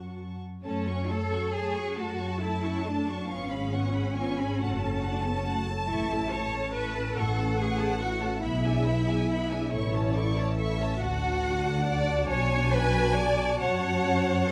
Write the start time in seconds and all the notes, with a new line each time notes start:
Already playing: F#2 F#3 F#4 F#5 A5 C#6
0.64 F#2 A3 C#4 A4 C#5 A5
0.86 C#4 F#4 C#6
1.09 A3 A4 A5
1.32 C#4 F#4 C#6
1.54 A3 G#4 A4 A5
1.76 C#4 F#4 C#6
1.97 F#2 A3 F#4 A4 A5
2.19 C#4 F#4 C#6
2.40 A3 E4 A4 A5
2.63 C#4 F#4 C#6
2.84 A3 D4 A4 A5
3.06 C#4 F#4 C#6
3.28 G#1 B3 C#4 F4 F5 C#6
3.50 C#4 G#4 B5
3.72 B3 F4 F#5 C#6
3.94 C#4 G#4 B5
4.15 B3 F4 G#5 C#6
4.38 C#4 G#4 B5
4.59 F#1 A3 F#4 F#5 A5
4.79 C#4 A4 A5
5.01 A3 F#4 F#5
5.10 D4
5.20 C#4
5.24 B3 C#4 A4 A5
5.37 C#4
5.46 A3 F#4 F#5
5.66 C#4 A4 A5
5.88 A1 A3 E4 C#6
6.11 C#4 A4 A5
6.32 A3 E4 C#5 C#6
6.52 C#4 A4 A5
6.74 A3 E4 B4 C#6
6.95 C#4 A4 A5
7.16 A1 A3 E4 A4 F#5 C#6
7.38 C#4 A4 A5
7.58 A3 E4 G#4 C#6
7.79 C#4 A4 A5
8.00 A3 E4 F#4 C#6
8.21 C#4 A4 A5
8.42 B1 B3 E4 E5 B5
8.64 D4 G#4 G#5
8.85 B3 E4 B5
9.08 D4 G#4 G#5
9.30 B3 E4 B5
9.50 D4 G#4 G#5
9.72 A1 E4 A4 C#5 C#6
9.95 C#4 C#5 A5
10.13 E4 A4 D5 C#6
10.36 C#4 C#5 A5
10.57 E4 A4 E5 C#6
10.78 C#4 C#5 A5
10.98 D2 D4 F#4 F#5
11.02 A5
11.85 D5
12.28 B1 C#5 G#5
12.73 B4
13.16 D5
13.59 F#2 C#4 C#5 F#5
14.47 A4